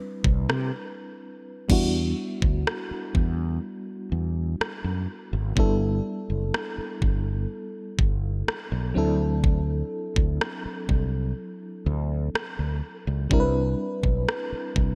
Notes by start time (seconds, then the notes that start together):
Already playing: G3 C4 D4 E4 B4
0.24 C2, kick
0.49 C3, cross-stick
1.69 E2 G3 B3 D4 E4, kick, crash
1.73 F#4
2.42 D2, kick
2.67 cross-stick
2.91 muted fretless electric bass stroke
3.15 E2, kick
4.12 E2
4.60 muted fretless electric bass stroke, cross-stick
4.84 F#2
5.33 G#1
5.56 G1 G3 B3 D4 E4 A4, kick
6.30 F#1
6.54 cross-stick
6.78 muted fretless electric bass stroke
7.02 G1, kick
7.99 G1, kick
8.48 muted fretless electric bass stroke, cross-stick
8.72 B1
8.94 D2 F#3 C4 D4 E4 A4
9.44 kick
10.16 D2, kick
10.41 cross-stick
10.65 muted fretless electric bass stroke
10.89 C2, kick
11.86 D2
12.34 muted fretless electric bass stroke, cross-stick
12.59 D2
13.07 C#2
13.29 C2 G3 C4 D4 E4 A#4, kick
13.40 B4
14.03 B1, kick
14.29 cross-stick
14.52 muted fretless electric bass stroke
14.76 C2, kick